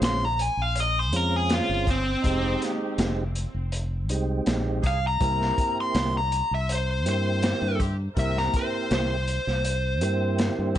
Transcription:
0.00 0.48 A#1 loud
0.00 0.27 G#3 medium
0.00 0.27 C4 medium
0.00 0.27 C#4 medium
0.00 0.27 F4 medium
0.00 snare loud
0.00 closed hi-hat medium
0.04 0.25 C6 loud
0.25 0.41 A#5 medium
0.39 0.62 G#5 medium
0.39 closed hi-hat medium
0.57 1.13 A#1 medium
0.62 0.80 F5 medium
0.76 closed hi-hat medium
0.80 0.99 D#5 medium
0.99 1.16 C5 medium
1.13 1.59 F2 medium
1.13 1.87 G#3 medium
1.13 1.87 C4 medium
1.13 1.87 C#4 medium
1.13 1.87 F4 medium
1.13 1.36 A#4 medium
1.13 closed hi-hat medium
1.36 1.52 G#4 medium
1.49 snare loud
1.49 closed hi-hat medium
1.54 1.88 F4 medium
1.69 2.14 G1 medium
1.87 2.61 C4 loud
1.87 2.03 C#4 medium
1.87 2.03 G#4 medium
1.87 2.04 C5 medium
1.87 kick medium
1.87 closed hi-hat medium
2.22 2.55 F1 loud
2.22 3.24 G#3 medium
2.22 3.24 C4 medium
2.22 2.97 D#4 medium
2.22 3.24 D#4 medium
2.22 2.98 G4 medium
2.22 3.24 G4 medium
2.22 kick medium
2.22 closed hi-hat medium
2.62 snare soft
2.62 closed hi-hat medium
2.98 3.45 F1 loud
2.98 snare loud
2.98 closed hi-hat medium
3.35 closed hi-hat medium
3.54 4.09 F1 medium
3.72 closed hi-hat medium
4.09 4.40 C2 medium
4.09 4.84 G#3 medium
4.09 4.84 C4 medium
4.09 4.84 D#4 medium
4.09 4.84 G4 medium
4.09 closed hi-hat medium
4.46 4.80 A#1 medium
4.46 snare loud
4.46 closed hi-hat medium
4.82 5.17 C2 medium
4.82 4.98 D#4 medium
4.82 4.99 G4 medium
4.82 4.99 G#4 medium
4.82 kick medium
4.82 closed hi-hat medium
4.87 5.04 F5 medium
5.07 5.77 A#5 medium
5.20 5.51 C2 loud
5.20 6.20 A#3 medium
5.20 5.94 C4 medium
5.20 6.20 C4 medium
5.20 5.94 E4 medium
5.20 6.21 E4 medium
5.20 6.21 G4 medium
5.20 5.95 A#4 medium
5.20 kick loud
5.20 closed hi-hat medium
5.42 snare soft
5.58 kick medium
5.58 closed hi-hat medium
5.81 6.15 C6 medium
5.95 6.41 C2 medium
5.95 snare loud
5.95 closed hi-hat medium
6.17 6.52 A#5 medium
6.32 closed hi-hat medium
6.51 7.06 C2 medium
6.51 6.70 E5 medium
6.69 7.07 C5 medium
6.69 closed hi-hat medium
7.06 7.52 G2 medium
7.06 7.80 A#3 medium
7.06 7.80 C4 medium
7.06 7.80 E4 medium
7.06 7.80 G4 medium
7.06 7.79 C5 medium
7.06 closed hi-hat medium
7.43 snare loud
7.43 closed hi-hat medium
7.62 8.07 G2 medium
7.79 7.95 C4 medium
7.79 7.96 E4 medium
7.79 7.96 G4 medium
7.79 kick medium
7.79 closed hi-hat medium
8.15 8.47 C2 loud
8.15 9.17 A#3 medium
8.15 8.91 C4 medium
8.15 9.17 C4 medium
8.15 8.91 E4 medium
8.15 9.17 E4 medium
8.15 9.17 G4 medium
8.15 8.91 A#4 medium
8.15 8.37 E5 medium
8.15 kick medium
8.15 closed hi-hat medium
8.37 8.55 A#5 medium
8.37 snare soft
8.54 8.92 C5 medium
8.54 kick medium
8.54 closed hi-hat medium
8.91 9.37 C2 medium
8.91 10.78 C5 loud
8.91 snare loud
8.91 closed hi-hat medium
9.28 closed hi-hat medium
9.47 10.02 C2 medium
9.47 snare soft
9.65 closed hi-hat medium
10.01 10.49 G2 medium
10.01 10.77 A#3 medium
10.01 10.76 C4 medium
10.01 10.76 E4 medium
10.01 10.76 G4 medium
10.01 10.75 C5 medium
10.01 closed hi-hat medium
10.38 snare loud
10.38 closed hi-hat medium
10.59 10.78 G2 medium
10.75 10.78 C4 medium
10.75 10.78 E4 medium

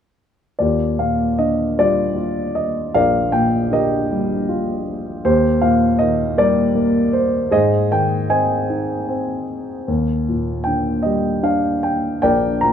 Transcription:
0.59 2.90 D#2 soft
0.59 1.74 F4 soft
0.59 1.74 G4 soft
0.59 1.00 D5 medium
0.99 2.51 A#2 soft
0.99 1.36 F5 medium
1.39 2.90 D3 soft
1.39 1.79 D#5 medium
1.78 3.29 G3 soft
1.78 2.15 F4 soft
1.78 2.91 G4 soft
1.78 2.58 D5 medium
2.16 3.67 F4 soft
2.55 2.95 D#5 medium
2.94 5.19 A#1 soft
2.94 3.71 A#4 medium
2.94 4.06 D5 medium
2.94 3.34 F5 medium
3.32 4.81 A#2 soft
3.32 3.72 G5 medium
3.71 5.19 D3 soft
3.71 4.82 G4 soft
3.71 4.82 A#4 soft
3.71 4.82 D#5 medium
4.11 5.21 G3 soft
4.49 5.21 F4 soft
5.25 7.48 D#2 medium
5.25 6.34 G4 soft
5.25 5.63 C5 medium
5.61 7.09 A#2 medium
5.61 5.97 F5 medium
5.99 7.48 D#3 soft
5.99 6.38 D#5 medium
6.38 7.49 G3 medium
6.38 7.48 G4 medium
6.38 7.48 A#4 soft
6.38 7.16 D5 medium
6.75 7.49 A#3 medium
7.13 7.49 C5 medium
7.51 9.84 G#2 medium
7.51 8.65 G#4 medium
7.51 8.29 C5 medium
7.51 7.92 D#5 medium
7.91 9.44 D#3 soft
7.91 8.32 G5 medium
8.30 9.07 C4 soft
8.30 9.44 C5 medium
8.30 9.44 D#5 medium
8.30 9.44 G#5 medium
8.70 9.84 D#4 soft
9.08 9.85 C4 soft
9.88 12.19 D#2 medium
10.29 11.81 A#2 soft
10.64 12.19 D3 soft
10.64 11.06 G5 medium
11.02 12.58 G3 soft
11.02 11.44 D#5 medium
11.43 12.73 D4 soft
11.43 11.85 F5 medium
11.83 12.21 G5 medium
12.22 12.73 A#1 medium
12.22 12.73 A#4 medium
12.22 12.73 D5 medium
12.22 12.59 G5 medium
12.61 12.73 A#2 soft
12.61 12.73 A#5 medium

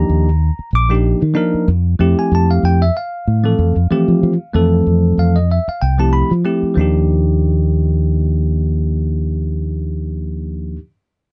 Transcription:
0.00 0.28 F3 medium
0.00 0.28 A#3 medium
0.00 0.28 D4 medium
0.00 0.28 D#4 medium
0.00 0.29 G4 medium
0.00 0.70 A#5 medium
0.09 0.49 D#2 medium
0.59 muted fingered electric bass stroke soft
0.73 1.13 A#1 medium
0.73 0.93 D6 medium
0.90 1.20 F3 medium
0.90 1.20 A#3 medium
0.90 1.20 D4 medium
0.90 1.21 D#4 medium
0.90 1.21 G4 medium
1.22 1.34 D#3 medium
1.34 1.67 F3 medium
1.34 1.67 A#3 medium
1.34 1.67 D4 medium
1.34 1.67 D#4 medium
1.34 1.68 A#4 medium
1.54 muted fingered electric bass stroke soft
1.68 1.94 F2 medium
1.99 2.14 F2 medium
1.99 2.82 F3 medium
1.99 2.82 A3 medium
1.99 2.82 C4 medium
1.99 2.83 E4 medium
1.99 2.83 G4 medium
2.19 2.32 G#5 medium
2.32 2.58 F2 medium
2.32 2.50 A5 medium
2.51 2.64 F5 medium
2.63 2.89 F2 medium
2.63 2.81 G5 medium
2.82 2.95 E5 medium
2.97 4.83 F5 medium
3.27 3.53 A2 medium
3.43 3.75 E3 soft
3.43 3.74 F3 medium
3.43 3.75 A3 medium
3.43 3.74 C4 medium
3.43 3.75 A4 medium
3.59 3.73 F2 medium
3.76 3.88 F2 medium
3.90 4.32 E3 medium
3.90 4.32 F3 medium
3.90 4.32 A3 medium
3.90 4.32 C4 medium
3.90 4.33 G4 medium
3.90 muted fingered electric bass stroke soft
4.08 4.20 F3 medium
4.23 4.37 F3 medium
4.54 4.80 F2 medium
4.54 5.37 E3 medium
4.54 5.37 F3 medium
4.54 5.36 A3 medium
4.54 5.37 C4 medium
4.54 5.37 A4 medium
4.87 5.12 F2 medium
5.18 5.58 F2 medium
5.18 5.35 F5 medium
5.36 5.49 D#5 medium
5.51 5.67 E5 medium
5.68 5.82 F5 medium
5.68 muted fingered electric bass stroke soft
5.82 6.22 C2 medium
5.82 5.98 G5 medium
5.98 6.29 F3 medium
5.98 6.29 A3 soft
5.98 6.29 C4 soft
5.98 6.29 E4 soft
5.98 6.30 G4 medium
5.98 6.13 A5 medium
6.13 6.32 B5 medium
6.31 6.43 F3 medium
6.44 6.73 F3 medium
6.44 6.77 A3 medium
6.44 6.76 C4 medium
6.44 6.77 E4 medium
6.44 6.77 G4 medium
6.63 muted fingered electric bass stroke soft
6.74 10.77 D#2 medium
6.74 10.75 F3 medium
6.74 10.76 A#3 medium
6.74 10.77 D4 medium
6.80 10.78 D#4 medium
6.80 10.79 G4 medium

